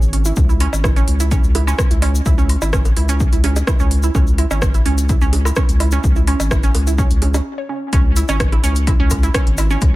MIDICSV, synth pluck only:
0, 0, Header, 1, 2, 480
1, 0, Start_track
1, 0, Key_signature, 4, "minor"
1, 0, Tempo, 472441
1, 374, Time_signature, 4, 2, 24, 8
1, 10115, End_track
2, 0, Start_track
2, 0, Title_t, "Synth pluck"
2, 0, Program_c, 0, 84
2, 133, Note_on_c, 0, 61, 73
2, 197, Note_off_c, 0, 61, 0
2, 259, Note_on_c, 0, 64, 79
2, 317, Note_off_c, 0, 64, 0
2, 499, Note_on_c, 0, 64, 78
2, 538, Note_off_c, 0, 64, 0
2, 614, Note_on_c, 0, 61, 105
2, 656, Note_off_c, 0, 61, 0
2, 853, Note_on_c, 0, 64, 78
2, 896, Note_off_c, 0, 64, 0
2, 978, Note_on_c, 0, 61, 105
2, 1018, Note_off_c, 0, 61, 0
2, 1220, Note_on_c, 0, 64, 78
2, 1258, Note_off_c, 0, 64, 0
2, 1334, Note_on_c, 0, 61, 104
2, 1376, Note_off_c, 0, 61, 0
2, 1574, Note_on_c, 0, 64, 80
2, 1616, Note_off_c, 0, 64, 0
2, 1699, Note_on_c, 0, 61, 105
2, 1738, Note_off_c, 0, 61, 0
2, 1939, Note_on_c, 0, 64, 76
2, 1978, Note_off_c, 0, 64, 0
2, 2054, Note_on_c, 0, 61, 99
2, 2096, Note_off_c, 0, 61, 0
2, 2294, Note_on_c, 0, 64, 87
2, 2336, Note_off_c, 0, 64, 0
2, 2418, Note_on_c, 0, 61, 100
2, 2458, Note_off_c, 0, 61, 0
2, 2659, Note_on_c, 0, 64, 77
2, 2698, Note_off_c, 0, 64, 0
2, 2773, Note_on_c, 0, 61, 96
2, 2816, Note_off_c, 0, 61, 0
2, 3013, Note_on_c, 0, 64, 85
2, 3056, Note_off_c, 0, 64, 0
2, 3139, Note_on_c, 0, 61, 103
2, 3178, Note_off_c, 0, 61, 0
2, 3379, Note_on_c, 0, 64, 77
2, 3418, Note_off_c, 0, 64, 0
2, 3494, Note_on_c, 0, 61, 104
2, 3536, Note_off_c, 0, 61, 0
2, 3734, Note_on_c, 0, 64, 84
2, 3777, Note_off_c, 0, 64, 0
2, 3859, Note_on_c, 0, 61, 99
2, 3898, Note_off_c, 0, 61, 0
2, 4100, Note_on_c, 0, 64, 79
2, 4139, Note_off_c, 0, 64, 0
2, 4214, Note_on_c, 0, 61, 102
2, 4257, Note_off_c, 0, 61, 0
2, 4454, Note_on_c, 0, 64, 78
2, 4496, Note_off_c, 0, 64, 0
2, 4579, Note_on_c, 0, 61, 101
2, 4618, Note_off_c, 0, 61, 0
2, 4820, Note_on_c, 0, 64, 78
2, 4858, Note_off_c, 0, 64, 0
2, 4934, Note_on_c, 0, 61, 105
2, 4977, Note_off_c, 0, 61, 0
2, 5173, Note_on_c, 0, 64, 80
2, 5216, Note_off_c, 0, 64, 0
2, 5298, Note_on_c, 0, 61, 110
2, 5338, Note_off_c, 0, 61, 0
2, 5539, Note_on_c, 0, 64, 75
2, 5578, Note_off_c, 0, 64, 0
2, 5653, Note_on_c, 0, 61, 107
2, 5696, Note_off_c, 0, 61, 0
2, 5893, Note_on_c, 0, 64, 75
2, 5936, Note_off_c, 0, 64, 0
2, 6020, Note_on_c, 0, 61, 106
2, 6058, Note_off_c, 0, 61, 0
2, 6260, Note_on_c, 0, 64, 78
2, 6298, Note_off_c, 0, 64, 0
2, 6375, Note_on_c, 0, 61, 104
2, 6417, Note_off_c, 0, 61, 0
2, 6615, Note_on_c, 0, 64, 78
2, 6657, Note_off_c, 0, 64, 0
2, 6741, Note_on_c, 0, 61, 106
2, 6779, Note_off_c, 0, 61, 0
2, 6981, Note_on_c, 0, 64, 77
2, 7019, Note_off_c, 0, 64, 0
2, 7095, Note_on_c, 0, 61, 107
2, 7137, Note_off_c, 0, 61, 0
2, 7336, Note_on_c, 0, 61, 79
2, 7377, Note_off_c, 0, 61, 0
2, 7461, Note_on_c, 0, 61, 75
2, 7519, Note_off_c, 0, 61, 0
2, 7701, Note_on_c, 0, 73, 74
2, 7739, Note_off_c, 0, 73, 0
2, 7815, Note_on_c, 0, 61, 75
2, 7857, Note_off_c, 0, 61, 0
2, 8055, Note_on_c, 0, 61, 107
2, 8097, Note_off_c, 0, 61, 0
2, 8295, Note_on_c, 0, 64, 83
2, 8337, Note_off_c, 0, 64, 0
2, 8420, Note_on_c, 0, 61, 107
2, 8459, Note_off_c, 0, 61, 0
2, 8659, Note_on_c, 0, 64, 82
2, 8698, Note_off_c, 0, 64, 0
2, 8774, Note_on_c, 0, 61, 110
2, 8816, Note_off_c, 0, 61, 0
2, 9015, Note_on_c, 0, 64, 79
2, 9057, Note_off_c, 0, 64, 0
2, 9141, Note_on_c, 0, 61, 106
2, 9179, Note_off_c, 0, 61, 0
2, 9380, Note_on_c, 0, 64, 76
2, 9419, Note_off_c, 0, 64, 0
2, 9495, Note_on_c, 0, 61, 105
2, 9537, Note_off_c, 0, 61, 0
2, 9735, Note_on_c, 0, 64, 76
2, 9777, Note_off_c, 0, 64, 0
2, 9861, Note_on_c, 0, 61, 100
2, 9899, Note_off_c, 0, 61, 0
2, 10115, End_track
0, 0, End_of_file